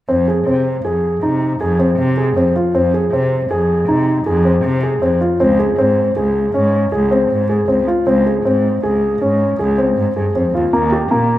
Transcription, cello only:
0, 0, Header, 1, 2, 480
1, 0, Start_track
1, 0, Key_signature, -4, "minor"
1, 0, Tempo, 380228
1, 107, Time_signature, 7, 2, 24, 8
1, 14372, End_track
2, 0, Start_track
2, 0, Title_t, "Cello"
2, 0, Program_c, 0, 42
2, 108, Note_on_c, 0, 41, 77
2, 477, Note_off_c, 0, 41, 0
2, 594, Note_on_c, 0, 48, 69
2, 960, Note_off_c, 0, 48, 0
2, 1073, Note_on_c, 0, 41, 67
2, 1440, Note_off_c, 0, 41, 0
2, 1553, Note_on_c, 0, 48, 68
2, 1920, Note_off_c, 0, 48, 0
2, 2026, Note_on_c, 0, 41, 82
2, 2396, Note_off_c, 0, 41, 0
2, 2508, Note_on_c, 0, 48, 74
2, 2877, Note_off_c, 0, 48, 0
2, 2984, Note_on_c, 0, 41, 75
2, 3170, Note_off_c, 0, 41, 0
2, 3473, Note_on_c, 0, 41, 82
2, 3839, Note_off_c, 0, 41, 0
2, 3953, Note_on_c, 0, 48, 74
2, 4320, Note_off_c, 0, 48, 0
2, 4427, Note_on_c, 0, 41, 73
2, 4796, Note_off_c, 0, 41, 0
2, 4901, Note_on_c, 0, 48, 70
2, 5272, Note_off_c, 0, 48, 0
2, 5379, Note_on_c, 0, 41, 88
2, 5751, Note_off_c, 0, 41, 0
2, 5865, Note_on_c, 0, 48, 73
2, 6234, Note_off_c, 0, 48, 0
2, 6341, Note_on_c, 0, 41, 74
2, 6527, Note_off_c, 0, 41, 0
2, 6828, Note_on_c, 0, 37, 87
2, 7196, Note_off_c, 0, 37, 0
2, 7305, Note_on_c, 0, 44, 72
2, 7674, Note_off_c, 0, 44, 0
2, 7780, Note_on_c, 0, 37, 73
2, 8151, Note_off_c, 0, 37, 0
2, 8263, Note_on_c, 0, 44, 75
2, 8633, Note_off_c, 0, 44, 0
2, 8742, Note_on_c, 0, 37, 77
2, 9112, Note_off_c, 0, 37, 0
2, 9228, Note_on_c, 0, 44, 68
2, 9596, Note_off_c, 0, 44, 0
2, 9705, Note_on_c, 0, 37, 78
2, 9890, Note_off_c, 0, 37, 0
2, 10189, Note_on_c, 0, 37, 79
2, 10557, Note_off_c, 0, 37, 0
2, 10669, Note_on_c, 0, 44, 69
2, 11037, Note_off_c, 0, 44, 0
2, 11155, Note_on_c, 0, 37, 70
2, 11521, Note_off_c, 0, 37, 0
2, 11633, Note_on_c, 0, 44, 72
2, 11999, Note_off_c, 0, 44, 0
2, 12103, Note_on_c, 0, 37, 82
2, 12474, Note_off_c, 0, 37, 0
2, 12596, Note_on_c, 0, 44, 72
2, 12777, Note_off_c, 0, 44, 0
2, 12826, Note_on_c, 0, 43, 63
2, 13042, Note_off_c, 0, 43, 0
2, 13069, Note_on_c, 0, 41, 66
2, 13284, Note_off_c, 0, 41, 0
2, 13310, Note_on_c, 0, 39, 65
2, 13524, Note_off_c, 0, 39, 0
2, 13548, Note_on_c, 0, 39, 77
2, 13916, Note_off_c, 0, 39, 0
2, 14031, Note_on_c, 0, 46, 74
2, 14372, Note_off_c, 0, 46, 0
2, 14372, End_track
0, 0, End_of_file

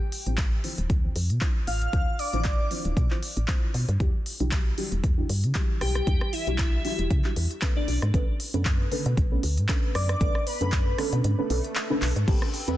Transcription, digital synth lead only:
0, 0, Header, 1, 2, 480
1, 0, Start_track
1, 0, Tempo, 517241
1, 1794, Time_signature, 4, 2, 24, 8
1, 11852, End_track
2, 0, Start_track
2, 0, Title_t, "Digital synth lead"
2, 0, Program_c, 0, 84
2, 1553, Note_on_c, 0, 77, 98
2, 2012, Note_off_c, 0, 77, 0
2, 2033, Note_on_c, 0, 74, 96
2, 2492, Note_off_c, 0, 74, 0
2, 5394, Note_on_c, 0, 67, 94
2, 5852, Note_off_c, 0, 67, 0
2, 5874, Note_on_c, 0, 64, 93
2, 6332, Note_off_c, 0, 64, 0
2, 6354, Note_on_c, 0, 64, 91
2, 6534, Note_off_c, 0, 64, 0
2, 7205, Note_on_c, 0, 62, 87
2, 7366, Note_off_c, 0, 62, 0
2, 9234, Note_on_c, 0, 74, 91
2, 9692, Note_off_c, 0, 74, 0
2, 9714, Note_on_c, 0, 71, 93
2, 10172, Note_off_c, 0, 71, 0
2, 11852, End_track
0, 0, End_of_file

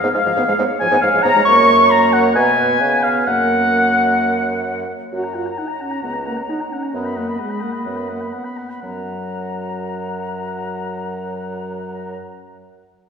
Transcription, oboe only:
0, 0, Header, 1, 2, 480
1, 0, Start_track
1, 0, Key_signature, 6, "major"
1, 0, Tempo, 442152
1, 1599, Time_signature, 4, 2, 24, 8
1, 3048, Tempo, 458716
1, 7848, Tempo, 483092
1, 13509, End_track
2, 0, Start_track
2, 0, Title_t, "Oboe"
2, 0, Program_c, 0, 68
2, 0, Note_on_c, 0, 77, 87
2, 150, Note_off_c, 0, 77, 0
2, 156, Note_on_c, 0, 77, 102
2, 633, Note_off_c, 0, 77, 0
2, 866, Note_on_c, 0, 80, 114
2, 1095, Note_off_c, 0, 80, 0
2, 1103, Note_on_c, 0, 77, 109
2, 1339, Note_on_c, 0, 82, 108
2, 1355, Note_off_c, 0, 77, 0
2, 1569, Note_off_c, 0, 82, 0
2, 1576, Note_on_c, 0, 85, 127
2, 2069, Note_on_c, 0, 82, 114
2, 2085, Note_off_c, 0, 85, 0
2, 2313, Note_on_c, 0, 78, 103
2, 2330, Note_off_c, 0, 82, 0
2, 2553, Note_off_c, 0, 78, 0
2, 2560, Note_on_c, 0, 80, 112
2, 3285, Note_on_c, 0, 77, 93
2, 3301, Note_off_c, 0, 80, 0
2, 3532, Note_on_c, 0, 78, 107
2, 3548, Note_off_c, 0, 77, 0
2, 5235, Note_off_c, 0, 78, 0
2, 5479, Note_on_c, 0, 78, 41
2, 5599, Note_on_c, 0, 82, 35
2, 5614, Note_off_c, 0, 78, 0
2, 5703, Note_on_c, 0, 78, 36
2, 5719, Note_off_c, 0, 82, 0
2, 5831, Note_on_c, 0, 82, 37
2, 5847, Note_off_c, 0, 78, 0
2, 5952, Note_on_c, 0, 78, 36
2, 5967, Note_off_c, 0, 82, 0
2, 6059, Note_on_c, 0, 82, 39
2, 6075, Note_off_c, 0, 78, 0
2, 6188, Note_on_c, 0, 78, 34
2, 6204, Note_off_c, 0, 82, 0
2, 6303, Note_on_c, 0, 82, 34
2, 6318, Note_off_c, 0, 78, 0
2, 6415, Note_off_c, 0, 82, 0
2, 6422, Note_on_c, 0, 78, 39
2, 6537, Note_on_c, 0, 82, 33
2, 6553, Note_off_c, 0, 78, 0
2, 6667, Note_on_c, 0, 78, 39
2, 6682, Note_off_c, 0, 82, 0
2, 6780, Note_on_c, 0, 82, 37
2, 6796, Note_off_c, 0, 78, 0
2, 6914, Note_on_c, 0, 78, 41
2, 6929, Note_off_c, 0, 82, 0
2, 7028, Note_on_c, 0, 82, 43
2, 7044, Note_off_c, 0, 78, 0
2, 7151, Note_on_c, 0, 78, 36
2, 7167, Note_off_c, 0, 82, 0
2, 7260, Note_on_c, 0, 82, 35
2, 7276, Note_off_c, 0, 78, 0
2, 7370, Note_off_c, 0, 82, 0
2, 7376, Note_on_c, 0, 78, 46
2, 7497, Note_on_c, 0, 83, 41
2, 7512, Note_off_c, 0, 78, 0
2, 7612, Note_on_c, 0, 78, 42
2, 7628, Note_off_c, 0, 83, 0
2, 7736, Note_on_c, 0, 83, 39
2, 7752, Note_off_c, 0, 78, 0
2, 7851, Note_on_c, 0, 78, 37
2, 7866, Note_off_c, 0, 83, 0
2, 7961, Note_on_c, 0, 83, 39
2, 7976, Note_off_c, 0, 78, 0
2, 8071, Note_on_c, 0, 78, 36
2, 8086, Note_off_c, 0, 83, 0
2, 8186, Note_on_c, 0, 83, 30
2, 8200, Note_off_c, 0, 78, 0
2, 8295, Note_off_c, 0, 83, 0
2, 8301, Note_on_c, 0, 78, 34
2, 8418, Note_on_c, 0, 83, 30
2, 8433, Note_off_c, 0, 78, 0
2, 8538, Note_on_c, 0, 78, 31
2, 8553, Note_off_c, 0, 83, 0
2, 8667, Note_on_c, 0, 83, 26
2, 8682, Note_off_c, 0, 78, 0
2, 8780, Note_on_c, 0, 78, 30
2, 8795, Note_off_c, 0, 83, 0
2, 8894, Note_on_c, 0, 83, 27
2, 8909, Note_off_c, 0, 78, 0
2, 9022, Note_on_c, 0, 78, 25
2, 9037, Note_off_c, 0, 83, 0
2, 9145, Note_on_c, 0, 83, 20
2, 9160, Note_off_c, 0, 78, 0
2, 9253, Note_off_c, 0, 83, 0
2, 9259, Note_on_c, 0, 78, 26
2, 12581, Note_off_c, 0, 78, 0
2, 13509, End_track
0, 0, End_of_file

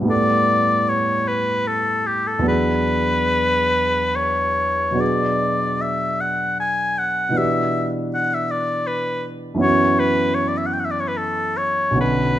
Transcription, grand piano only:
0, 0, Header, 1, 2, 480
1, 0, Start_track
1, 0, Tempo, 789474
1, 65, Time_signature, 3, 2, 24, 8
1, 1508, Tempo, 835655
1, 3428, Tempo, 776197
1, 4868, Tempo, 754717
1, 6788, Tempo, 847458
1, 7479, End_track
2, 0, Start_track
2, 0, Title_t, "Grand piano"
2, 0, Program_c, 0, 0
2, 0, Control_c, 0, 64, 127
2, 0, Note_on_c, 0, 43, 46
2, 0, Note_on_c, 0, 55, 38
2, 0, Note_on_c, 0, 59, 40
2, 0, Note_on_c, 0, 66, 39
2, 0, Note_on_c, 0, 71, 41
2, 10, Note_on_c, 0, 45, 47
2, 17, Note_off_c, 0, 55, 0
2, 17, Note_on_c, 0, 55, 42
2, 29, Note_off_c, 0, 59, 0
2, 29, Note_on_c, 0, 59, 42
2, 40, Note_on_c, 0, 64, 41
2, 50, Note_on_c, 0, 69, 42
2, 73, Control_c, 0, 64, 0
2, 77, Note_off_c, 0, 43, 0
2, 80, Note_off_c, 0, 71, 0
2, 81, Note_off_c, 0, 66, 0
2, 159, Control_c, 0, 64, 127
2, 1453, Note_on_c, 0, 40, 45
2, 1455, Note_off_c, 0, 45, 0
2, 1459, Note_off_c, 0, 55, 0
2, 1462, Note_on_c, 0, 54, 38
2, 1463, Note_off_c, 0, 59, 0
2, 1470, Note_off_c, 0, 64, 0
2, 1472, Note_on_c, 0, 59, 35
2, 1476, Note_off_c, 0, 69, 0
2, 1483, Note_on_c, 0, 62, 35
2, 1493, Note_on_c, 0, 68, 37
2, 1517, Control_c, 0, 64, 0
2, 1622, Control_c, 0, 64, 127
2, 2904, Note_off_c, 0, 54, 0
2, 2904, Note_on_c, 0, 47, 41
2, 2908, Note_off_c, 0, 40, 0
2, 2913, Note_on_c, 0, 54, 35
2, 2917, Note_off_c, 0, 59, 0
2, 2922, Note_off_c, 0, 62, 0
2, 2926, Note_on_c, 0, 59, 34
2, 2927, Note_off_c, 0, 68, 0
2, 2934, Note_on_c, 0, 62, 37
2, 2943, Note_on_c, 0, 68, 37
2, 2966, Control_c, 0, 64, 0
2, 3075, Control_c, 0, 64, 127
2, 4326, Note_off_c, 0, 47, 0
2, 4335, Note_on_c, 0, 47, 43
2, 4345, Note_off_c, 0, 54, 0
2, 4346, Note_off_c, 0, 59, 0
2, 4347, Note_on_c, 0, 52, 37
2, 4355, Note_on_c, 0, 59, 37
2, 4356, Note_off_c, 0, 62, 0
2, 4361, Note_off_c, 0, 68, 0
2, 4367, Note_on_c, 0, 62, 36
2, 4380, Note_on_c, 0, 67, 36
2, 4405, Control_c, 0, 64, 0
2, 4521, Control_c, 0, 64, 127
2, 5751, Note_off_c, 0, 52, 0
2, 5753, Note_on_c, 0, 42, 50
2, 5758, Note_off_c, 0, 47, 0
2, 5761, Note_on_c, 0, 52, 43
2, 5764, Note_off_c, 0, 59, 0
2, 5774, Note_off_c, 0, 62, 0
2, 5774, Note_on_c, 0, 59, 42
2, 5781, Note_off_c, 0, 67, 0
2, 5785, Note_on_c, 0, 61, 41
2, 5795, Note_on_c, 0, 66, 42
2, 5824, Control_c, 0, 64, 0
2, 5920, Control_c, 0, 64, 127
2, 7208, Note_on_c, 0, 35, 45
2, 7209, Note_off_c, 0, 42, 0
2, 7212, Note_off_c, 0, 52, 0
2, 7218, Note_off_c, 0, 59, 0
2, 7218, Note_on_c, 0, 50, 35
2, 7223, Note_off_c, 0, 61, 0
2, 7227, Note_off_c, 0, 66, 0
2, 7230, Note_on_c, 0, 59, 37
2, 7240, Note_on_c, 0, 61, 37
2, 7248, Note_on_c, 0, 66, 37
2, 7270, Control_c, 0, 64, 0
2, 7363, Control_c, 0, 64, 127
2, 7479, Note_off_c, 0, 35, 0
2, 7479, Note_off_c, 0, 50, 0
2, 7479, Note_off_c, 0, 59, 0
2, 7479, Note_off_c, 0, 61, 0
2, 7479, Note_off_c, 0, 66, 0
2, 7479, End_track
0, 0, End_of_file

